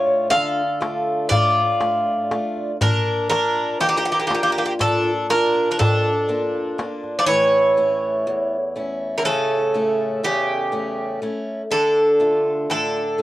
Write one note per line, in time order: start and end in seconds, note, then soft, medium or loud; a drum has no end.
0.00 0.28 A2 medium
0.00 0.61 A3 soft
0.00 0.61 D4 soft
0.00 0.27 F4 medium
0.00 0.61 F4 medium
0.00 0.27 C#5 medium
0.07 darbuka tek soft
0.30 1.28 D3 medium
0.30 1.27 A4 medium
0.30 1.26 F5 loud
0.30 darbuka tek medium
0.81 1.60 A3 soft
0.81 1.61 D4 soft
0.81 1.61 F4 medium
0.81 darbuka tek medium
1.29 2.27 A2 medium
1.29 2.77 F4 medium
1.29 2.75 D5 medium
1.29 darbuka dum medium
1.81 2.30 A3 soft
1.81 2.30 D4 soft
1.81 2.31 F4 soft
1.81 darbuka tek medium
2.31 2.71 A3 medium
2.31 2.71 D4 soft
2.31 2.71 F4 soft
2.31 darbuka tek medium
2.56 darbuka tek soft
2.81 3.77 A#2 medium
2.81 3.27 D4 medium
2.81 3.27 A#4 medium
2.81 darbuka dum medium
3.07 darbuka tek soft
3.29 4.10 A#3 soft
3.29 3.77 D4 medium
3.29 4.10 D4 soft
3.29 4.10 F4 soft
3.29 3.80 A#4 medium
3.29 darbuka tek medium
3.57 darbuka tek soft
3.80 4.76 F2 medium
3.80 3.87 A#3 medium
3.80 3.87 G4 medium
3.80 darbuka tek medium
3.89 3.95 A#3 medium
3.89 3.95 G4 medium
3.96 4.03 A#3 medium
3.96 4.03 G4 medium
4.05 4.11 A#3 soft
4.05 4.11 G4 medium
4.12 4.19 A#3 soft
4.12 4.18 G4 medium
4.19 4.26 A#3 soft
4.19 4.26 G4 soft
4.27 4.34 A#3 soft
4.27 5.09 A#3 soft
4.27 5.09 D4 soft
4.27 4.33 G4 medium
4.27 darbuka tek medium
4.31 4.42 A#3 soft
4.31 5.10 F4 medium
4.31 4.41 G4 soft
4.43 4.49 A#3 soft
4.43 4.49 G4 medium
4.50 4.57 A#3 soft
4.50 4.57 G4 soft
4.55 4.64 A#3 soft
4.55 4.64 G4 medium
4.55 darbuka tek soft
4.65 4.72 A#3 soft
4.65 4.72 G4 soft
4.79 5.75 A#2 medium
4.79 5.26 D4 medium
4.79 5.26 A4 medium
4.79 darbuka tek medium
4.79 darbuka dum medium
5.05 darbuka tek soft
5.30 6.09 A#3 soft
5.30 6.09 D4 soft
5.30 5.69 D4 medium
5.30 6.09 F4 medium
5.30 5.69 A#4 medium
5.30 darbuka tek medium
5.55 darbuka tek soft
5.71 5.78 D4 soft
5.71 5.78 A#4 medium
5.79 6.75 F2 medium
5.79 7.24 D4 medium
5.79 7.18 A4 medium
5.79 darbuka dum loud
6.06 darbuka tek soft
6.29 6.77 A#3 soft
6.29 6.78 D4 soft
6.29 6.78 F4 medium
6.55 darbuka tek soft
6.78 7.17 A#3 soft
6.78 7.18 D4 soft
6.78 7.18 F4 medium
6.78 darbuka tek medium
7.04 darbuka tek soft
7.19 7.26 F3 medium
7.19 7.26 D5 medium
7.26 8.23 A2 medium
7.26 9.14 E3 medium
7.26 9.13 C#5 loud
7.77 8.56 A3 soft
7.77 8.56 C#4 soft
7.77 8.56 E4 soft
8.27 9.22 E2 medium
8.76 9.55 A3 soft
8.76 9.55 C#4 soft
8.76 9.55 E4 medium
9.18 9.25 D3 medium
9.18 9.25 A#4 medium
9.25 10.21 A2 medium
9.25 10.20 C#3 medium
9.25 10.27 A4 medium
9.74 10.53 A3 medium
9.74 10.53 C#4 soft
9.74 10.54 E4 medium
10.23 11.19 E2 medium
10.23 11.19 C#3 soft
10.23 11.18 G4 medium
10.72 11.21 A3 soft
10.72 11.21 C#4 soft
10.72 11.22 E4 medium
11.22 11.61 A3 medium
11.22 11.61 C#4 soft
11.22 11.62 E4 medium
11.71 12.66 D3 medium
11.71 12.70 A4 medium
12.20 12.99 A3 soft
12.20 12.99 D4 soft
12.20 12.99 F4 medium
12.70 13.22 A2 medium
12.70 13.22 D3 medium
12.70 13.22 A4 medium
13.18 13.22 A3 medium
13.18 13.22 D4 soft